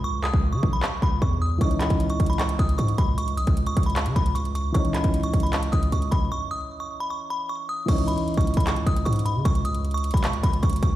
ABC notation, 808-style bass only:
X:1
M:4/4
L:1/16
Q:1/4=153
K:C#m
V:1 name="808-style bass" clef=bass
C,,3 C,,2 C, B,,,2 z2 C,,2 E,,4 | C,,3 C,,3 C,,4 C,,2 G,,2 C,,2- | C,,2 B,,, C,,3 C,,3 C, C,,6 | C,,3 C,,3 C,,4 C,,2 C,,2 C,,2 |
z16 | C,,3 z2 C,,2 C,,3 C,,2 G,,3 C, | C,,6- C,, C,,3 C,,2 C,,2 C,,2 |]